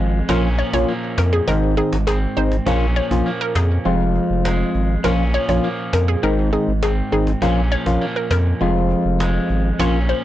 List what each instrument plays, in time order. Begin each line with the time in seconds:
Already playing: clean electric guitar F2 F3 G#3, synth stab F3 G#3 C4 F4
0.00 sub bass G#1
0.29 sub bass A#1, clean electric guitar A#2 C#4, synth stab F3 A#3 C#4 F4, synth pluck A#4, cajon bass
0.59 clean electric guitar F3, synth pluck C#5, cajon slap
0.73 sub bass A#1, synth stab F3 A#3 C#4 F4, synth pluck C#5, cajon bass
0.88 clean electric guitar A#3, cajon slap
1.18 sub bass F2, synth pluck A#4, cajon bass, cajon slap
1.33 synth pluck G#4
1.48 sub bass G#1, clean electric guitar G#2, synth stab D#3 G#3 C4 D#4, synth pluck A#4, cajon bass
1.77 synth stab D#3 G#3 C4 D#4, synth pluck G#4, cajon slap
1.93 sub bass G#1, cajon slap
2.07 clean electric guitar C4, synth pluck G#4, cajon slap
2.37 sub bass G#1, synth stab D#3 G#3 C4 D#4, synth pluck C5, cajon slap
2.52 cajon slap
2.66 sub bass A#1, clean electric guitar A#2 C#4, synth stab F3 A#3 C#4 F4, cajon bass
2.96 clean electric guitar F3, synth pluck C#5, cajon slap
3.11 sub bass A#1, synth stab F3 A#3 C#4 F4, cajon bass
3.26 clean electric guitar A#3, cajon slap
3.41 synth pluck A#4
3.55 sub bass F2, synth pluck G#4, cajon bass, cajon slap
3.85 sub bass F1, clean electric guitar F2, synth stab F3 G#3 C4 F4, cajon slap
4.15 cajon slap
4.30 sub bass F1
4.45 clean electric guitar G#3, cajon slap
4.75 sub bass G#1, cajon slap
5.04 sub bass A#1, clean electric guitar A#2 C#4, synth stab F3 A#3 C#4 F4, synth pluck A#4, cajon bass
5.34 clean electric guitar F3, synth pluck C#5, cajon slap
5.49 sub bass A#1, synth stab F3 A#3 C#4 F4, synth pluck C#5, cajon bass
5.64 clean electric guitar A#3, cajon slap
5.93 sub bass F2, synth pluck A#4, cajon bass, cajon slap
6.08 synth pluck G#4
6.23 sub bass G#1, clean electric guitar G#2, synth stab D#3 G#3 C4 D#4, synth pluck A#4, cajon slap
6.53 synth stab D#3 G#3 C4 D#4, synth pluck G#4, cajon slap
6.68 sub bass G#1
6.83 clean electric guitar C4, synth pluck G#4, cajon slap
7.12 sub bass G#1, synth stab D#3 G#3 C4 D#4, synth pluck G#4, cajon slap
7.27 cajon slap
7.42 sub bass A#1, clean electric guitar A#2 C#4, synth stab F3 A#3 C#4 F4, cajon bass
7.72 clean electric guitar F3, synth pluck C#5, cajon slap
7.86 sub bass A#1, synth stab F3 A#3 C#4 F4, cajon bass
8.01 clean electric guitar A#3, cajon slap
8.16 synth pluck A#4
8.31 sub bass F2, synth pluck A#4, cajon bass, cajon slap
8.61 sub bass F1, clean electric guitar F2, synth stab F3 G#3 C4 F4, cajon slap
8.90 cajon slap
9.05 sub bass F1
9.20 clean electric guitar G#3, cajon slap
9.50 sub bass G#1, cajon slap
9.79 sub bass A#1, clean electric guitar A#2 C#4, synth stab F3 A#3 C#4 F4, synth pluck C#5, cajon bass
10.09 clean electric guitar F3, synth pluck C5, cajon slap